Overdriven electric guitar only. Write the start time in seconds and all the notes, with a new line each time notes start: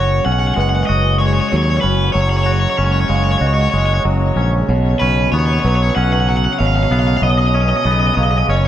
Already playing: C#5
0.25 F#5
0.32 F#5
0.39 F#5
0.47 F#5
0.54 F#5
0.60 F#5
0.69 F#5
0.76 F#5
0.83 D#5 F#5
1.18 C#5
1.27 C#5
1.33 C#5
1.40 C#5
1.48 C#5
1.56 C#5
1.63 C#5
1.70 C#5
1.77 C#5
1.81 B4
2.12 C#5
2.21 C#5
2.29 C#5
2.37 C#5
2.44 C#5
2.52 C#5
2.60 C#5
2.70 C#5
2.77 C#5
2.84 C#5
2.92 C#5
3.01 C#5
3.08 C#5
3.16 C#5
3.24 C#5
3.31 C#5
3.38 C#5
3.47 C#5
3.54 C#5
3.61 C#5
3.70 C#5
3.78 C#5
3.85 C#5
3.94 C#5
5.00 B4
5.32 C#5
5.39 C#5
5.46 C#5
5.54 C#5
5.60 C#5
5.68 C#5
5.75 C#5
5.83 C#5
5.90 C#5
5.96 F#5
6.04 F#5
6.13 F#5
6.20 F#5
6.29 F#5
6.37 F#5
6.45 F#5
6.53 F#5
6.59 F5
6.67 F5
6.76 F5
6.83 F5
6.92 F5
6.99 F5
7.07 F5
7.17 F5
7.23 D#5
7.30 D#5
7.38 D#5
7.47 D#5
7.54 D#5
7.61 D#5
7.69 D#5
7.77 D#5
7.85 D#5
7.92 D#5
8.00 D#5
8.07 D#5
8.15 D#5
8.23 D#5
8.31 D#5
8.38 D#5
8.50 C#5
8.56 C#5